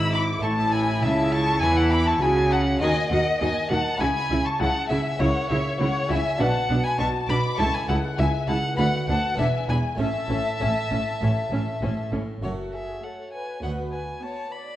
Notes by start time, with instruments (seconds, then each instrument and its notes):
Already playing: double bass section G#1, harpsichord G#2 G#3 E4 B4, cello section G#2, viola section E4, violin B5, violin section E6
0.13 violin section B5 D6, violin B5
0.39 harpsichord A3 E4 A4, viola section E4, violin section A5
0.43 double bass section A1, cello section A2, harpsichord A2, violin A5, violin section C#6
0.72 violin section G#5 B5, violin G#5
1.01 double bass section C#2, harpsichord C#3, cello section C#3, violin E5, violin section E5 A5
1.32 violin A5, violin section A5 C#6
1.62 double bass section E2, cello section E3, harpsichord E3, viola section E4, violin G#5, violin section G#5 B5
1.77 violin F#5, violin section F#5 A5
1.91 violin B5, violin section B5 D6
2.06 violin section A5 C#6, violin A5
2.21 double bass section C#2, cello section C#3, harpsichord C#3, viola section F#4, violin section G#5 B5, violin G#5
2.51 violin section F#5 A5, violin F#5
2.77 harpsichord C4 F#4 G#4, violin section G#5
2.81 double bass section D#2, cello section D#3, harpsichord D#3, viola section F#4, violin D#5, violin section D#5
3.10 double bass section D#2, cello section D#3, harpsichord D#3, viola section F#4, violin section D#5 F#5, violin D#5
3.40 double bass section D#2, harpsichord D#3, cello section D#3, viola section F#4, violin D#5, violin section D#5 G#5
3.70 double bass section D#2, cello section D#3, harpsichord D#3, viola section F#4, violin F#5, violin section F#5 A5
3.96 harpsichord C#4 E4 G#4, viola section E4, violin G#5
4.00 double bass section C#2, cello section C#3, harpsichord C#3, violin section G#5 B5
4.30 double bass section C#2, cello section C#3, harpsichord C#3, viola section E4
4.45 violin A5, violin section A5 C#6
4.60 double bass section C#2, cello section C#3, harpsichord C#3, viola section E4, violin F#5, violin section F#5 A5
4.89 double bass section C#2, cello section C#3, harpsichord C#3, viola section E4, violin E5, violin section E5 G#5
5.16 cello section C#3, harpsichord C#4 E4 A#4, violin section F#5
5.20 double bass section C#2, harpsichord C#3, viola section E4, violin C#5, violin section C#5
5.49 double bass section C#2, cello section C#3, harpsichord C#3, viola section E4, violin C#5, violin section C#5 E5
5.79 double bass section C#2, cello section C#3, harpsichord C#3, viola section E4, violin C#5, violin section C#5 F#5
6.09 double bass section C#2, cello section C#3, harpsichord C#3, viola section E4, violin E5, violin section E5 G#5
6.36 cello section B2, harpsichord D4 F#4 B4, viola section D4, violin section A5
6.40 double bass section B1, harpsichord B2, violin F#5, violin section F#5
6.70 double bass section B1, cello section B2, harpsichord B2, viola section D4
6.84 violin G#5, violin section G#5 B5
6.98 double bass section B1, cello section B2, harpsichord B2, viola section D4, violin A5, violin section A5 C#6
7.29 double bass section B1, cello section B2, harpsichord B2, viola section D4, violin B5, violin section B5 D6
7.55 cello section C#2, harpsichord C#4 E4 A4, viola section E4, violin section C#6
7.59 double bass section C#2, harpsichord C#2, violin section A5, violin A5
7.74 violin G#5, violin section G#5 B5
7.87 cello section C#2, harpsichord C#2, double bass section C#2, viola section E4, violin F#5, violin section F#5 A5
8.17 cello section C#2, harpsichord C#2, double bass section C#2, viola section E4, violin section E5 G#5, violin E5
8.47 double bass section C#2, harpsichord C#2, cello section C#2, viola section E4, violin F#5, violin section F#5 A5
8.74 harpsichord B3 F#4 A4, violin section B5
8.78 cello section D2, double bass section D2, harpsichord D2, viola section D4, violin F#5, violin section F#5
9.08 double bass section D2, harpsichord D2, cello section D2, viola section D4, violin F#5, violin section F#5 A5
9.34 harpsichord B3 E4 D5
9.38 double bass section E1, harpsichord E2, cello section E2, viola section D4, violin E5, violin section E5 G#5
9.69 double bass section E1, harpsichord E2, cello section E2, viola section D4, violin section G#5 B5, violin G#5
9.95 harpsichord A3 E4 C#5, violin E5
9.99 double bass section A1, harpsichord A2, cello section A2, viola section C#4, violin section E5 A5
10.30 double bass section A1, harpsichord A2, cello section A2, viola section C#4
10.60 double bass section A1, harpsichord A2, cello section A2, viola section C#4
10.91 double bass section A1, cello section A2, harpsichord A2, viola section C#4
11.21 double bass section A1, cello section A2, harpsichord A2, viola section C#4
11.51 double bass section A1, cello section A2, harpsichord A2, viola section C#4
11.81 double bass section A1, cello section A2, harpsichord A2, viola section C#4
12.12 double bass section A1, cello section A2, harpsichord A2, viola section C#4
12.42 double bass section F#1, cello section F#2, harpsichord F#2 A3 F#4 C#5, violin section F#4 A4, violin C#5
12.73 violin section G#4, violin E5
13.03 viola section A3, violin section A4 C#5, violin F#5
13.33 violin section B4, violin G#5
13.62 harpsichord D2 B3 F#4 B4, cello section D2, double bass section D2, violin section B4, violin F#5
13.92 violin section B4, violin G#5
14.23 viola section B3, violin section C#5, violin A5
14.52 violin section D5, violin B5